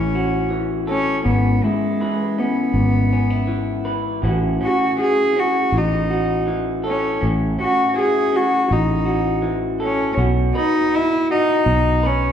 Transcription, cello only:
0.00 0.52 C#4 medium
0.90 1.24 C#4 medium
1.27 1.65 B3 medium
1.64 2.41 G#3 medium
2.39 3.87 B3 medium
4.64 4.98 F#4 medium
5.01 5.41 G#4 medium
5.39 5.79 F#4 medium
5.77 6.50 D#4 medium
6.87 7.21 C#4 medium
7.62 7.96 F#4 medium
7.99 8.38 G#4 medium
8.36 8.74 F#4 medium
8.72 9.45 D#4 medium
9.83 10.17 C#4 medium
10.56 10.96 D#4 medium
10.95 11.31 E4 medium
11.31 12.07 D#4 medium
12.06 12.32 C#4 medium

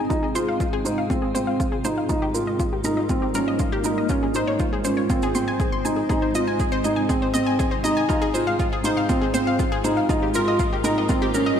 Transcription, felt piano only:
0.10 0.24 D#4 medium
0.35 0.63 F4 medium
0.85 0.99 D#4 medium
1.10 1.24 C4 medium
1.35 1.63 C4 medium
1.85 1.99 D#4 medium
2.09 2.23 D#4 medium
2.34 2.63 F4 medium
2.84 2.99 D#4 medium
3.10 3.24 C4 medium
3.34 3.63 C#4 medium
3.84 3.98 D#4 medium
4.10 4.24 C#4 medium
4.35 4.63 D#4 medium
4.84 4.99 C#4 medium
5.10 5.24 C4 medium
5.35 5.63 C4 medium
5.85 5.99 D#4 medium
6.10 6.24 D#4 medium
6.35 6.63 F4 medium
6.85 6.99 D#4 medium
7.10 7.24 C4 medium
7.34 7.63 C4 medium
7.84 7.99 D#4 medium
8.10 8.24 D#4 loud
8.35 8.63 F4 medium
8.84 8.98 D#4 medium
9.10 9.24 C4 medium
9.34 9.63 C4 medium
9.84 9.99 D#4 medium
10.09 10.23 D#4 loud
10.34 10.63 F4 medium
10.84 10.98 D#4 medium
11.09 11.23 C4 medium
11.34 11.60 C#4 medium

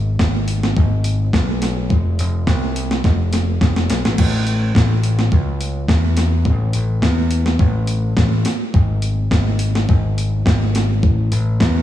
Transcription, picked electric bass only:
0.00 0.15 G#1 loud
0.20 0.72 G#1 loud
0.77 1.29 G#1 loud
1.34 1.92 B1 loud
1.90 2.16 F1 medium
2.19 2.45 F1 loud
2.47 3.00 C2 loud
3.04 3.57 F1 loud
3.61 3.87 F1 loud
3.90 4.03 B1 medium
4.04 4.17 A1 medium
4.19 4.71 A1 medium
4.75 5.28 A1 medium
5.32 5.85 C#2 medium
5.88 6.47 E2 loud
6.46 6.72 A1 loud
6.74 7.01 A1 medium
7.02 7.56 E2 loud
7.60 8.13 A1 loud
8.17 8.43 A1 loud
8.74 9.27 G#1 medium
9.31 9.85 G#1 loud
9.89 10.42 G#1 medium
10.46 11.03 G#1 loud
11.03 11.29 A1 loud
11.32 11.58 A1 loud
11.60 11.82 E2 loud

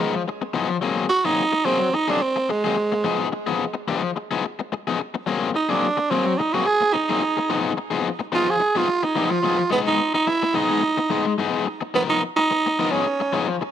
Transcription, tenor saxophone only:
0.00 0.24 G#3 medium
1.09 1.27 F#4 loud
1.25 1.67 D#4 loud
1.65 1.96 C4 loud
1.94 2.11 D#4 medium
2.10 2.24 D4 medium
2.22 2.52 C4 loud
2.50 3.34 G#3 medium
5.56 5.71 D#4 medium
5.70 6.12 D4 medium
6.11 6.40 C4 medium
6.38 6.55 D#4 medium
6.54 6.68 F#4 loud
6.66 6.95 G#4 loud
6.93 7.77 D#4 loud
8.35 8.52 F4 loud
8.50 8.79 G#4 loud
8.77 9.06 F4 loud
9.04 9.32 D#4 medium
9.30 9.72 F4 medium
9.72 9.79 B3 medium
9.87 10.13 D#4 loud
10.14 10.29 D#4 loud
10.28 10.57 E4 medium
10.56 11.39 D#4 loud
11.95 12.02 B3 medium
12.09 12.22 D#4 loud
12.36 12.92 D#4 loud
12.91 13.48 C#4 medium

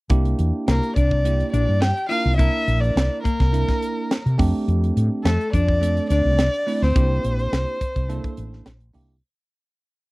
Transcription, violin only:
0.69 0.95 A#4 medium
0.96 1.49 D5 medium
1.52 1.82 D5 medium
1.80 2.08 G5 medium
2.08 2.35 F5 medium
2.36 2.82 E5 medium
2.81 3.22 D5 medium
3.23 4.34 A#4 medium
5.24 5.51 A4 medium
5.52 6.06 D5 medium
6.09 6.84 D5 loud
6.82 8.66 C5 medium

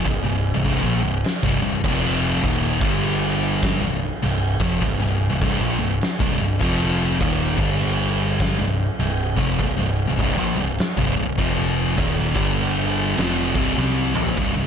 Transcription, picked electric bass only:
0.05 0.23 C1 medium
0.24 0.52 C1 medium
0.54 0.64 C1 medium
0.65 0.82 C1 loud
0.84 1.01 A#1 medium
1.03 1.23 C1 medium
1.43 1.61 C1 medium
1.62 1.83 C1 medium
1.84 2.39 F1 loud
2.43 2.78 D#1 loud
2.82 3.78 G1 loud
3.81 4.09 C1 medium
4.23 4.58 C1 medium
4.60 4.80 F1 loud
4.82 5.00 C1 medium
5.00 5.28 C1 medium
5.30 5.41 C1 medium
5.42 5.59 C1 loud
5.61 5.78 A#1 medium
5.79 6.00 C1 medium
6.20 6.37 C1 medium
6.39 6.59 C1 medium
6.61 7.17 F1 loud
7.21 7.56 D#1 loud
7.59 8.55 G1 loud
8.59 8.86 C1 medium
8.99 9.34 C1 medium
9.37 9.58 F1 loud
9.60 9.77 C1 medium
9.78 10.06 C1 medium
10.08 10.18 C1 medium
10.19 10.36 C1 loud
10.38 10.55 A#1 medium
10.57 10.77 C1 medium
10.97 11.15 C1 medium
11.17 11.37 C1 medium
11.38 11.94 F1 loud
11.98 12.33 D#1 loud
12.35 13.13 G1 loud
13.18 13.53 F1 loud
13.55 13.76 C1 medium
13.78 14.13 C2 loud
14.15 14.35 A#1 loud
14.37 14.55 C1 medium
14.57 14.67 C1 medium

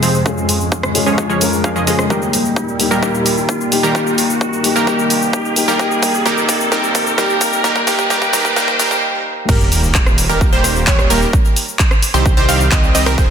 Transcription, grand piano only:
0.00 0.24 G#3 medium
0.00 0.27 C4 medium
0.00 0.26 F4 medium
0.00 0.27 G#4 medium
0.24 0.92 G#3 medium
0.24 0.92 C#4 medium
0.24 0.92 F4 medium
0.24 0.93 G#4 medium
0.94 1.38 G#3 medium
0.94 1.39 C#4 medium
0.94 1.39 F4 medium
0.94 1.39 G#4 medium
1.40 1.84 G#3 medium
1.40 1.84 C#4 medium
1.40 1.84 F4 medium
1.40 1.85 A#4 loud
1.87 2.07 G#3 medium
1.87 2.07 C#4 medium
1.87 2.08 F4 medium
1.87 2.08 G#4 medium
2.09 2.76 G3 medium
2.09 2.77 A#3 medium
2.09 2.77 D#4 medium
2.09 2.77 G4 medium
2.78 3.00 G3 medium
2.78 3.00 A#3 medium
2.78 3.01 D#4 medium
2.78 3.01 G4 medium
3.01 3.68 G3 medium
3.01 3.69 A#3 medium
3.01 3.69 D#4 medium
3.01 3.70 G4 medium
3.71 3.92 G3 medium
3.71 3.93 A#3 medium
3.71 3.93 D#4 medium
3.71 3.94 G4 loud
3.94 4.61 G3 medium
3.94 4.61 A#3 medium
3.94 4.62 D#4 medium
3.94 4.62 G4 medium
4.63 4.84 G3 medium
4.63 4.85 A#3 medium
4.63 4.86 D#4 medium
4.63 4.86 G4 loud
4.86 5.53 G3 medium
4.86 5.53 A#3 medium
4.86 5.54 D#4 medium
4.86 5.54 G4 medium
5.55 5.77 G3 medium
5.55 5.77 A#3 medium
5.55 5.78 D#4 medium
5.55 5.78 G4 loud
5.78 6.23 G3 medium
5.78 6.24 A#3 medium
5.78 6.24 D#4 medium
5.78 6.24 G4 medium
6.24 6.69 G3 medium
6.24 6.70 A#3 medium
6.24 6.70 D#4 medium
6.24 6.71 G4 medium
6.71 7.15 G3 medium
6.71 7.16 A#3 medium
6.71 7.16 D#4 medium
6.71 7.17 G4 medium
7.17 7.61 G3 medium
7.17 7.62 A#3 medium
7.17 7.62 D#4 medium
7.17 7.63 G4 medium
7.63 7.84 G3 medium
7.63 7.85 A#3 medium
7.63 7.86 D#4 medium
7.63 7.86 G4 loud
7.86 8.08 G3 medium
7.86 8.08 A#3 medium
7.86 8.09 D#4 medium
7.86 8.09 G4 loud
8.09 8.31 G3 medium
8.09 8.31 A#3 medium
8.09 8.32 D#4 medium
8.09 8.32 G4 loud
8.32 8.54 G3 medium
8.32 8.54 A#3 medium
8.32 8.55 D#4 medium
8.32 8.55 G4 medium
8.55 8.77 G3 medium
8.55 8.77 A#3 medium
8.55 8.78 D#4 medium
8.55 8.78 G4 medium
8.78 9.00 G3 medium
8.78 9.00 A#3 medium
8.78 9.01 D#4 medium
8.78 9.01 G4 medium

